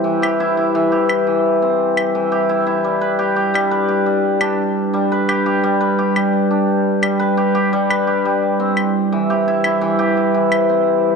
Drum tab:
CL |-x----x----x----|----x----x----x-|---x----x----x--|--x----x----x---|